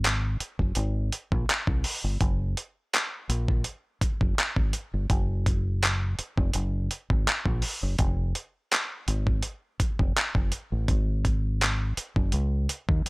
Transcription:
0.00 0.36 G#1 loud
0.04 clap loud
0.04 closed hi-hat medium
0.40 muted fingered electric bass stroke soft
0.40 closed hi-hat medium
0.59 0.75 F#1 medium
0.59 kick medium
0.75 1.09 G#1 loud
0.75 closed hi-hat medium
1.12 closed hi-hat medium
1.32 1.47 A#1 medium
1.32 kick loud
1.49 muted fingered electric bass stroke soft
1.49 clap loud
1.49 closed hi-hat medium
1.67 1.83 C2 medium
1.67 kick loud
1.84 open hi-hat medium
2.04 2.19 G1 medium
2.21 2.54 F#1 loud
2.21 kick loud
2.21 closed hi-hat medium
2.57 closed hi-hat medium
2.94 clap loud
2.94 closed hi-hat medium
3.29 3.62 A#1 medium
3.29 closed hi-hat medium
3.48 kick medium
3.64 closed hi-hat medium
4.01 muted fingered electric bass stroke soft
4.01 kick loud
4.01 closed hi-hat medium
4.21 4.36 F#1 medium
4.21 kick loud
4.38 clap loud
4.38 closed hi-hat medium
4.56 4.72 G#1 medium
4.56 kick loud
4.73 closed hi-hat medium
4.94 5.09 G1 medium
5.10 6.14 F#1 loud
5.10 kick loud
5.10 closed hi-hat medium
5.46 kick medium
5.46 closed hi-hat medium
5.83 clap loud
5.83 closed hi-hat medium
6.19 muted fingered electric bass stroke soft
6.19 closed hi-hat medium
6.38 6.53 F1 loud
6.38 kick medium
6.53 6.87 F#1 loud
6.53 closed hi-hat medium
6.91 closed hi-hat medium
7.10 7.25 G#1 medium
7.10 kick loud
7.27 muted fingered electric bass stroke soft
7.27 clap loud
7.27 closed hi-hat medium
7.46 7.61 A#1 medium
7.46 kick loud
7.62 open hi-hat medium
7.83 7.98 F#1 medium
7.99 8.32 F1 loud
7.99 kick loud
7.99 closed hi-hat medium
8.35 closed hi-hat medium
8.72 clap loud
8.72 closed hi-hat medium
9.08 9.41 G#1 medium
9.08 closed hi-hat medium
9.27 kick medium
9.43 closed hi-hat medium
9.80 muted fingered electric bass stroke medium
9.80 kick medium
9.80 closed hi-hat medium
9.99 10.15 F1 medium
9.99 kick loud
10.17 clap loud
10.17 closed hi-hat medium
10.35 10.50 F#1 medium
10.35 kick medium
10.52 closed hi-hat medium
10.72 10.87 A1 medium
10.88 11.93 G#1 loud
10.88 kick loud
10.88 closed hi-hat medium
11.25 kick loud
11.25 closed hi-hat medium
11.61 clap loud
11.61 closed hi-hat medium
11.97 muted fingered electric bass stroke soft
11.97 closed hi-hat medium
12.16 12.31 F#1 medium
12.16 kick medium
12.32 12.66 C#2 loud
12.32 closed hi-hat medium
12.69 closed hi-hat medium
12.89 13.04 D#2 medium
12.89 kick medium
13.05 muted fingered electric bass stroke soft
13.05 closed hi-hat medium

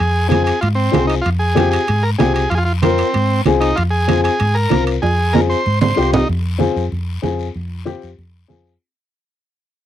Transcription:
0.00 0.50 F2 medium
0.00 0.27 G#4 medium
0.00 high conga soft
0.00 high timbale medium
0.00 long guiro medium
0.28 0.52 C4 medium
0.28 0.52 F4 medium
0.28 0.43 G#4 medium
0.28 0.52 G#4 medium
0.28 high conga medium
0.28 high timbale medium
0.28 short guiro medium
0.44 0.60 G#4 medium
0.44 high timbale medium
0.44 short guiro medium
0.61 0.88 G#2 medium
0.61 0.69 F4 medium
0.61 high conga soft
0.61 high timbale medium
0.61 long guiro medium
0.75 1.06 C4 medium
0.92 1.20 C2 medium
0.92 1.15 C4 medium
0.92 1.15 F4 medium
0.92 1.15 G#4 medium
0.92 high conga medium
0.92 high timbale medium
0.92 low timbale medium
0.92 short guiro medium
1.07 1.15 D#4 medium
1.07 high timbale medium
1.07 short guiro medium
1.22 1.30 F4 medium
1.22 long guiro medium
1.26 1.76 F2 medium
1.26 high conga soft
1.26 high timbale medium
1.39 1.69 G#4 medium
1.55 1.78 C4 medium
1.55 1.78 F4 medium
1.55 1.79 G4 medium
1.55 high conga medium
1.55 high timbale medium
1.55 short guiro medium
1.71 2.04 G#4 medium
1.71 high timbale medium
1.71 short guiro medium
1.87 2.14 G#2 medium
1.87 high conga soft
1.87 high timbale medium
1.87 long guiro medium
2.03 2.10 A#4 medium
2.18 2.45 C2 medium
2.18 2.41 C4 medium
2.18 2.42 F4 medium
2.18 2.42 G4 medium
2.18 2.33 G#4 medium
2.18 high conga medium
2.18 high timbale medium
2.18 low timbale medium
2.18 short guiro medium
2.34 2.50 G#4 medium
2.34 high timbale medium
2.34 short guiro medium
2.50 3.02 F2 medium
2.50 2.54 F4 medium
2.50 high conga soft
2.50 high timbale medium
2.50 long guiro medium
2.55 2.64 F4 medium
2.55 2.59 G#4 medium
2.65 2.73 F4 medium
2.82 3.41 C4 medium
2.82 3.05 C4 medium
2.82 3.05 F4 medium
2.82 3.05 A#4 medium
2.82 high conga medium
2.82 high timbale medium
2.82 short guiro medium
2.98 high timbale medium
2.98 short guiro medium
3.14 3.40 G#2 medium
3.14 high conga soft
3.14 high timbale medium
3.14 long guiro medium
3.46 3.72 C2 medium
3.46 3.68 C4 medium
3.46 3.68 F4 medium
3.46 3.68 G#4 medium
3.46 high conga medium
3.46 high timbale medium
3.46 short guiro medium
3.60 3.77 D#4 medium
3.60 high timbale medium
3.60 short guiro medium
3.76 4.28 F2 medium
3.76 3.83 F4 loud
3.76 high conga soft
3.76 high timbale medium
3.76 long guiro medium
3.91 4.21 G#4 loud
4.08 4.30 C4 medium
4.08 4.30 F4 medium
4.08 4.31 G#4 medium
4.08 high conga medium
4.08 high timbale medium
4.08 short guiro medium
4.24 4.57 G#4 medium
4.24 high timbale medium
4.24 short guiro medium
4.40 4.66 G#2 medium
4.40 high conga soft
4.40 high timbale medium
4.40 long guiro medium
4.55 4.85 A#4 medium
4.70 4.97 C2 medium
4.70 4.93 C4 medium
4.70 4.93 F4 medium
4.70 4.93 A#4 medium
4.70 high conga medium
4.70 high timbale medium
4.70 short guiro medium
4.87 high timbale medium
4.87 short guiro medium
5.02 5.54 F2 medium
5.02 5.35 G#4 medium
5.02 high conga soft
5.02 high timbale medium
5.02 long guiro medium
5.33 5.56 C4 medium
5.33 5.56 F4 medium
5.33 5.56 G#4 medium
5.33 5.41 A#4 medium
5.33 high conga medium
5.33 high timbale medium
5.33 short guiro medium
5.50 5.79 C5 loud
5.50 short guiro medium
5.66 5.92 G#2 medium
5.66 high conga soft
5.66 long guiro medium
5.81 6.11 C5 medium
5.81 high conga medium
5.81 low timbale medium
5.96 6.23 C2 medium
5.96 6.19 C4 medium
5.96 6.19 F4 medium
5.96 6.19 G4 medium
5.96 low timbale medium
5.96 short guiro medium
6.13 6.28 D#4 medium
6.13 low conga medium
6.13 low timbale loud
6.13 short guiro medium
6.29 6.67 F2 medium
6.29 high conga soft
6.29 long guiro medium
6.58 6.82 C4 medium
6.58 6.82 F4 medium
6.58 6.82 G#4 medium
6.58 high conga medium
6.58 short guiro medium
6.76 6.89 F2 medium
6.76 short guiro medium
6.92 7.17 F2 medium
6.92 high conga soft
6.92 long guiro medium
7.22 7.49 F2 medium
7.22 7.45 C4 medium
7.22 7.45 F4 medium
7.22 7.45 G#4 medium
7.22 high conga medium
7.22 short guiro medium
7.39 short guiro medium
7.55 7.93 F2 medium
7.55 high conga soft
7.55 long guiro medium
7.85 8.08 C4 medium
7.85 8.08 F4 medium
7.85 8.09 G4 medium
7.85 high conga medium
7.85 short guiro medium
8.02 8.16 F2 medium
8.02 short guiro medium
8.18 8.44 F2 medium
8.18 high conga soft
8.18 long guiro medium
8.48 8.76 F2 medium
8.48 8.71 C4 medium
8.48 8.72 F4 medium
8.48 8.71 G#4 medium
8.48 high conga medium
8.48 short guiro medium
8.66 short guiro medium

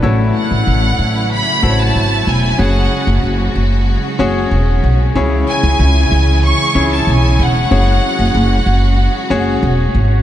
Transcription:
0.02 0.30 A1 medium
0.02 0.95 A2 medium
0.02 10.22 C#3 medium
0.02 5.11 F#3 medium
0.02 2.57 A3 medium
0.02 0.96 E4 medium
0.02 2.57 E4 medium
0.02 0.96 F#4 medium
0.02 0.96 A4 medium
0.02 0.96 C#5 medium
0.36 1.28 F#5 medium
0.51 0.64 A1 medium
0.67 0.94 A1 medium
0.99 1.39 A1 medium
1.33 1.80 B5 medium
1.62 1.90 A1 medium
1.62 2.33 E4 medium
1.62 2.33 F#4 medium
1.62 2.33 A4 medium
1.62 1.70 C5 medium
1.70 2.36 C#5 medium
1.80 2.28 A5 medium
1.95 2.22 G#1 medium
2.27 2.54 E1 medium
2.27 2.60 G#5 medium
2.58 2.86 F#1 medium
2.58 10.22 G#3 medium
2.58 3.52 C#4 medium
2.58 3.52 F#4 medium
2.58 5.13 F#4 medium
2.58 3.52 G#4 medium
2.58 3.52 C#5 medium
2.58 3.24 F#5 medium
3.07 3.21 F#1 medium
3.23 3.50 F#1 medium
3.55 3.95 F#1 medium
4.19 4.46 F#1 medium
4.19 4.89 C#4 medium
4.19 4.89 F#4 medium
4.19 4.89 G#4 medium
4.19 4.89 C#5 medium
4.51 4.78 E1 medium
4.84 5.10 B1 medium
5.15 5.42 C#2 medium
5.15 6.08 C#3 medium
5.15 7.69 E3 medium
5.15 6.08 C#4 medium
5.15 7.69 E4 medium
5.15 6.08 E4 medium
5.15 6.08 G#4 medium
5.15 6.09 C#5 medium
5.49 6.40 G#5 medium
5.63 5.77 C#2 medium
5.79 6.06 C#2 medium
6.12 6.51 C#2 medium
6.45 6.89 C#6 loud
6.75 7.01 C#2 medium
6.75 7.44 C#4 medium
6.75 7.45 E4 medium
6.75 7.45 G#4 medium
6.75 7.45 C#5 medium
6.94 7.08 A5 medium
7.07 7.33 B1 medium
7.07 7.40 G#5 medium
7.39 7.65 E1 medium
7.39 9.64 F#5 medium
7.71 7.97 F#1 medium
7.71 10.22 F#3 medium
7.71 8.64 C#4 medium
7.71 8.64 F#4 medium
7.71 10.22 F#4 medium
7.71 8.64 G#4 medium
7.71 8.64 C#5 medium
8.19 8.32 F#1 medium
8.35 8.61 F#1 medium
8.66 9.06 F#1 medium
9.30 9.57 F#1 medium
9.30 10.00 C#4 medium
9.30 10.00 F#4 medium
9.30 10.00 G#4 medium
9.30 10.00 C#5 medium
9.63 9.89 E1 medium
9.95 10.21 G#1 medium

